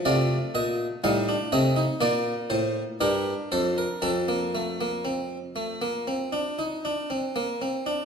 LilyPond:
<<
  \new Staff \with { instrumentName = "Harpsichord" } { \time 4/4 \key f \mixolydian \tempo 4 = 59 f'4 ees'16 d'16 c'16 ees'16 f'4 g'8 a'16 bes'16 | a'2.~ a'8 r8 | }
  \new Staff \with { instrumentName = "Harpsichord" } { \time 4/4 \key f \mixolydian << { <c d''>8 <bes, ees''>8 <a, f''>8 <c ees''>8 <bes, d''>8 <a, c''>8 <g, bes'>8 <f, c''>8 | <f, a''>2.~ <f, a''>8 r8 | } \\ { a4 g8 a8 bes4 d'4 | c'16 bes16 a16 bes16 c'8 a16 bes16 c'16 d'16 ees'16 d'16 c'16 bes16 c'16 d'16 | } >> }
>>